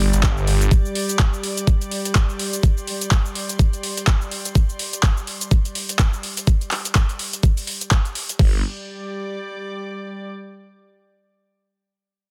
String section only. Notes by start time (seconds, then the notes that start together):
Already playing: G3 G4 D5 D6
2.31 C6
8.39 G3
8.48 G4
8.55 D5
8.61 D6